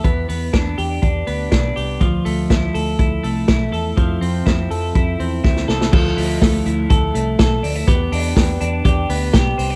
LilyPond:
<<
  \new Staff \with { instrumentName = "Clean electric guitar" } { \time 4/4 \key d \dorian \tempo 4 = 123 b8 b8 d'8 g'8 d'8 b8 d'8 g'8 | f8 a8 e'8 a'8 e'8 a8 e'8 a'8 | f8 c'8 e'8 a'8 e'8 c'8 e'8 a'8 | <f a'>8 e'8 a8 e'8 a'8 a8 a'8 d'16 e'16 |
<b g'>8 d'8 b8 d'8 g'8 b8 g'8 c'16 d'16 | }
  \new Staff \with { instrumentName = "Fingered electric bass" } { \clef bass \time 4/4 \key d \dorian e,8 e,8 e,8 e,8 e,8 d,8 b,,8 c,8 | d,8 d,8 d,8 d,8 d,8 c,8 b,,8 e,8 | f,8 f,8 f,8 f,8 f,8 e,8 d,8 c,8 | d,8 d,8 d,8 d,8 d,8 c,8 b,,8 d,8 |
e,8 e,8 e,8 e,8 e,8 d,8 b,,8 c,8 | }
  \new DrumStaff \with { instrumentName = "Drums" } \drummode { \time 4/4 <hh bd>8 hho8 <hh bd sn>8 hho8 <hh bd>8 hho8 <hh bd sn>8 hho8 | <hh bd>8 hho8 <hh bd sn>8 hho8 <hh bd>8 hho8 <hh bd sn>8 hho8 | <hh bd>8 hho8 <hh bd sn>8 hho8 <hh bd>8 hho8 <bd sn>16 sn16 sn16 sn16 | <cymc bd>8 <hho hhp>8 <hho hhp bd sn>8 <hho hhp>8 <hho hhp bd>8 <hho hhp>8 <hho hhp bd sn>8 <hho hhp>8 |
<hho hhp bd>8 <hho hhp>8 <hho hhp bd sn>8 <hho hhp>8 <hho hhp bd>8 <hho hhp>8 <hho hhp bd sn>8 <hho hhp>8 | }
>>